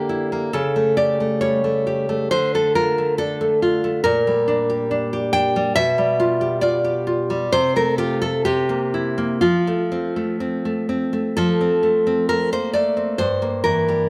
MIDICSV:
0, 0, Header, 1, 2, 480
1, 0, Start_track
1, 0, Key_signature, -1, "minor"
1, 0, Tempo, 892857
1, 285, Time_signature, 2, 2, 24, 8
1, 1245, Tempo, 863309
1, 2209, Key_signature, -1, "major"
1, 3645, Tempo, 895522
1, 4125, Tempo, 927357
1, 4605, Tempo, 972447
1, 6045, Tempo, 911854
1, 7475, End_track
2, 0, Start_track
2, 0, Title_t, "Nylon-string guitar"
2, 0, Program_c, 0, 24
2, 0, Note_on_c, 0, 50, 62
2, 0, Note_on_c, 0, 58, 43
2, 0, Note_on_c, 0, 62, 49
2, 0, Note_on_c, 0, 67, 85
2, 50, Note_on_c, 0, 64, 49
2, 166, Note_off_c, 0, 58, 0
2, 172, Note_on_c, 0, 58, 51
2, 265, Note_off_c, 0, 50, 0
2, 265, Note_off_c, 0, 67, 0
2, 284, Note_off_c, 0, 64, 0
2, 286, Note_on_c, 0, 69, 86
2, 288, Note_off_c, 0, 62, 0
2, 289, Note_off_c, 0, 58, 0
2, 290, Note_on_c, 0, 49, 66
2, 408, Note_on_c, 0, 57, 48
2, 514, Note_off_c, 0, 69, 0
2, 521, Note_on_c, 0, 74, 87
2, 525, Note_on_c, 0, 67, 52
2, 640, Note_off_c, 0, 57, 0
2, 647, Note_on_c, 0, 57, 43
2, 752, Note_off_c, 0, 74, 0
2, 757, Note_on_c, 0, 73, 76
2, 762, Note_on_c, 0, 55, 48
2, 875, Note_off_c, 0, 57, 0
2, 882, Note_on_c, 0, 57, 46
2, 997, Note_off_c, 0, 67, 0
2, 1003, Note_on_c, 0, 67, 51
2, 1117, Note_off_c, 0, 57, 0
2, 1123, Note_on_c, 0, 57, 53
2, 1223, Note_off_c, 0, 73, 0
2, 1226, Note_off_c, 0, 49, 0
2, 1241, Note_on_c, 0, 72, 110
2, 1242, Note_off_c, 0, 57, 0
2, 1244, Note_off_c, 0, 67, 0
2, 1244, Note_on_c, 0, 50, 71
2, 1245, Note_off_c, 0, 55, 0
2, 1365, Note_off_c, 0, 72, 0
2, 1373, Note_on_c, 0, 57, 51
2, 1375, Note_on_c, 0, 69, 75
2, 1486, Note_off_c, 0, 69, 0
2, 1488, Note_on_c, 0, 70, 93
2, 1491, Note_on_c, 0, 65, 53
2, 1608, Note_off_c, 0, 57, 0
2, 1615, Note_on_c, 0, 57, 50
2, 1719, Note_off_c, 0, 70, 0
2, 1727, Note_on_c, 0, 69, 85
2, 1729, Note_off_c, 0, 65, 0
2, 1731, Note_on_c, 0, 62, 51
2, 1846, Note_off_c, 0, 57, 0
2, 1852, Note_on_c, 0, 57, 57
2, 1970, Note_off_c, 0, 69, 0
2, 1972, Note_on_c, 0, 65, 56
2, 2086, Note_off_c, 0, 57, 0
2, 2092, Note_on_c, 0, 57, 56
2, 2186, Note_off_c, 0, 50, 0
2, 2200, Note_off_c, 0, 65, 0
2, 2202, Note_on_c, 0, 70, 104
2, 2208, Note_on_c, 0, 46, 76
2, 2210, Note_off_c, 0, 57, 0
2, 2210, Note_off_c, 0, 62, 0
2, 2333, Note_on_c, 0, 55, 54
2, 2446, Note_on_c, 0, 62, 57
2, 2568, Note_on_c, 0, 67, 54
2, 2680, Note_off_c, 0, 62, 0
2, 2686, Note_on_c, 0, 62, 58
2, 2803, Note_off_c, 0, 67, 0
2, 2810, Note_on_c, 0, 67, 61
2, 2904, Note_off_c, 0, 70, 0
2, 2920, Note_off_c, 0, 62, 0
2, 2920, Note_on_c, 0, 79, 102
2, 2926, Note_on_c, 0, 62, 55
2, 3042, Note_off_c, 0, 55, 0
2, 3049, Note_on_c, 0, 55, 54
2, 3144, Note_off_c, 0, 46, 0
2, 3152, Note_off_c, 0, 79, 0
2, 3157, Note_on_c, 0, 76, 127
2, 3162, Note_on_c, 0, 47, 77
2, 3165, Note_off_c, 0, 62, 0
2, 3166, Note_off_c, 0, 67, 0
2, 3167, Note_off_c, 0, 55, 0
2, 3283, Note_on_c, 0, 55, 56
2, 3403, Note_on_c, 0, 65, 70
2, 3521, Note_on_c, 0, 67, 62
2, 3621, Note_off_c, 0, 76, 0
2, 3634, Note_on_c, 0, 74, 86
2, 3635, Note_off_c, 0, 65, 0
2, 3642, Note_on_c, 0, 65, 67
2, 3752, Note_off_c, 0, 67, 0
2, 3759, Note_on_c, 0, 67, 58
2, 3872, Note_off_c, 0, 65, 0
2, 3879, Note_on_c, 0, 65, 65
2, 3997, Note_off_c, 0, 55, 0
2, 4003, Note_on_c, 0, 55, 58
2, 4101, Note_off_c, 0, 47, 0
2, 4101, Note_off_c, 0, 74, 0
2, 4123, Note_off_c, 0, 65, 0
2, 4123, Note_off_c, 0, 67, 0
2, 4123, Note_on_c, 0, 72, 120
2, 4125, Note_off_c, 0, 55, 0
2, 4128, Note_on_c, 0, 48, 76
2, 4243, Note_off_c, 0, 72, 0
2, 4245, Note_on_c, 0, 57, 58
2, 4248, Note_on_c, 0, 70, 85
2, 4357, Note_off_c, 0, 70, 0
2, 4359, Note_on_c, 0, 67, 91
2, 4363, Note_on_c, 0, 65, 68
2, 4475, Note_off_c, 0, 57, 0
2, 4479, Note_off_c, 0, 67, 0
2, 4481, Note_on_c, 0, 57, 55
2, 4481, Note_on_c, 0, 69, 85
2, 4592, Note_off_c, 0, 48, 0
2, 4600, Note_off_c, 0, 69, 0
2, 4602, Note_on_c, 0, 67, 92
2, 4604, Note_off_c, 0, 57, 0
2, 4605, Note_off_c, 0, 65, 0
2, 4607, Note_on_c, 0, 48, 78
2, 4722, Note_on_c, 0, 58, 53
2, 4844, Note_on_c, 0, 64, 56
2, 4955, Note_off_c, 0, 58, 0
2, 4961, Note_on_c, 0, 58, 58
2, 5064, Note_off_c, 0, 67, 0
2, 5071, Note_off_c, 0, 48, 0
2, 5076, Note_on_c, 0, 65, 86
2, 5082, Note_on_c, 0, 53, 71
2, 5084, Note_off_c, 0, 58, 0
2, 5086, Note_off_c, 0, 64, 0
2, 5206, Note_on_c, 0, 57, 54
2, 5326, Note_on_c, 0, 60, 56
2, 5442, Note_off_c, 0, 57, 0
2, 5448, Note_on_c, 0, 57, 51
2, 5544, Note_off_c, 0, 65, 0
2, 5560, Note_off_c, 0, 60, 0
2, 5566, Note_on_c, 0, 60, 52
2, 5684, Note_off_c, 0, 57, 0
2, 5690, Note_on_c, 0, 57, 49
2, 5801, Note_off_c, 0, 60, 0
2, 5807, Note_on_c, 0, 60, 58
2, 5919, Note_off_c, 0, 57, 0
2, 5924, Note_on_c, 0, 57, 53
2, 6024, Note_off_c, 0, 53, 0
2, 6042, Note_on_c, 0, 69, 101
2, 6044, Note_off_c, 0, 57, 0
2, 6045, Note_off_c, 0, 60, 0
2, 6048, Note_on_c, 0, 53, 78
2, 6169, Note_on_c, 0, 60, 52
2, 6285, Note_on_c, 0, 57, 53
2, 6404, Note_off_c, 0, 60, 0
2, 6410, Note_on_c, 0, 60, 54
2, 6511, Note_off_c, 0, 69, 0
2, 6526, Note_off_c, 0, 57, 0
2, 6527, Note_on_c, 0, 70, 96
2, 6532, Note_on_c, 0, 57, 60
2, 6648, Note_off_c, 0, 70, 0
2, 6649, Note_off_c, 0, 53, 0
2, 6651, Note_on_c, 0, 58, 48
2, 6653, Note_on_c, 0, 72, 84
2, 6760, Note_off_c, 0, 72, 0
2, 6762, Note_off_c, 0, 57, 0
2, 6762, Note_on_c, 0, 74, 86
2, 6769, Note_on_c, 0, 57, 55
2, 6878, Note_off_c, 0, 60, 0
2, 6885, Note_on_c, 0, 60, 54
2, 6989, Note_off_c, 0, 74, 0
2, 6998, Note_on_c, 0, 72, 90
2, 7001, Note_on_c, 0, 43, 72
2, 7002, Note_off_c, 0, 57, 0
2, 7002, Note_off_c, 0, 58, 0
2, 7002, Note_off_c, 0, 60, 0
2, 7122, Note_on_c, 0, 58, 49
2, 7230, Note_off_c, 0, 72, 0
2, 7237, Note_on_c, 0, 70, 92
2, 7243, Note_on_c, 0, 52, 58
2, 7367, Note_on_c, 0, 55, 51
2, 7470, Note_off_c, 0, 43, 0
2, 7473, Note_off_c, 0, 70, 0
2, 7475, Note_off_c, 0, 52, 0
2, 7475, Note_off_c, 0, 55, 0
2, 7475, Note_off_c, 0, 58, 0
2, 7475, End_track
0, 0, End_of_file